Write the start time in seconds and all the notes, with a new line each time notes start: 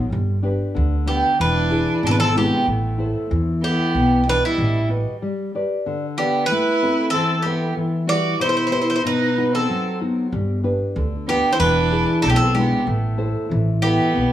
Already playing: A1
0.10 G1 G3
0.43 D4 G4 B4
0.75 D2 D3
1.06 B3 D4 G4 B4
1.39 E1 E3 D4 B4
1.70 D4 E4 G#4
2.03 G#1 B2 D4 A4
2.09 D4 B4
2.20 C4 A4
2.34 G#3 B3 D4 E4 G4
2.67 A1 A3
2.98 E4 A4 C5
3.30 E2 E3
3.62 B3 E4 G4 A4 E5
3.94 B1 B3
4.27 D4 F#4 B4 D#5
4.45 G3 E4
4.58 A1
4.89 F#4 B4 D#5
5.22 G3
5.55 G4 B4 D5
5.86 D3
6.18 B3 G4 B4 D5
6.46 E4 B4
6.51 A3
6.82 C4 A4 E5
7.10 C4 A4
7.14 E3
7.42 B3 G4 A4 E5
7.76 E3
8.07 G3 E4 F#4 B4 D5
8.39 B2 E4 C5
8.49 C5
8.57 C5
8.67 C5
8.71 E4 G4 B4 C5
8.82 C5
8.90 C5
8.96 C5
9.04 B2 D#4 B4
9.38 D#4 F#4 B4
9.52 C4 A4
9.69 F#3
10.00 B3 D#4 F#4
10.32 G1 G3
10.63 D4 G4 B4
10.96 D2 D3
11.27 B3 D4 G4 B4
11.52 E4 C5
11.59 E1 E3 D4 B4
11.90 D4 E4 G#4
12.21 B1 B2 D4 A4
12.30 A3 G4
12.36 C4 A4
12.53 G#3 D4 E4 G4
12.59 B3
12.86 A1 A3
13.17 E4 A4 C5
13.49 A1 E3
13.82 B3 E4 G4 A4 E5
14.14 B1 B3